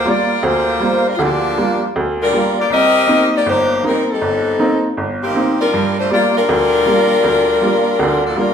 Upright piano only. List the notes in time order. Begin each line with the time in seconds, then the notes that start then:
0.05 G3 A#3 F4
0.43 D2
0.80 G3 A#3 F4
1.19 D2 D3
1.57 G3 A#3 F4
1.96 D2
2.33 G3 A#3 F4
2.70 C2
3.07 A#3 C4 D#4
3.46 G1
3.83 A#3 C4 D#4
4.21 G1
4.59 A#3 C4 D#4
4.97 G1
5.35 A#3 C4 D#4
5.73 G2
6.10 G3 A#3 F4
6.49 D2
6.86 G3 A#3 F4
7.24 D2
7.61 G3 A#3 F4
7.99 D2 D3
8.36 G3 A#3 F4